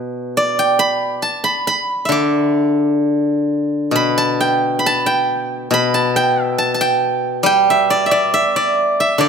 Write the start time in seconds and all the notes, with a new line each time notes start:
Already playing: B2 B4
0.37 D5
0.59 G5
0.79 B5
1.22 A5
1.44 B5
1.67 B5
2.05 D3 E5
2.12 D6
3.91 B2
3.96 B5
4.18 A5
4.41 G5
4.79 B5
4.86 A5
5.06 G5
5.71 B2 B5
5.94 A5
6.16 G5
6.43 E5
6.58 A5
6.74 A5
6.81 G5
7.43 G3 G5
7.70 E5
7.90 D5
8.06 E5
8.11 D5
8.34 E5
8.56 D5
9.00 E5
9.18 D3 D5